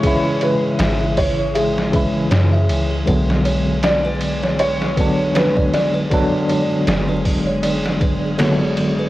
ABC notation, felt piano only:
X:1
M:4/4
L:1/8
Q:"Swing 16ths" 1/4=79
K:Bdor
V:1 name="Felt piano"
c B2 c G3 z | z2 d2 c2 B d- | d3 z4 z |]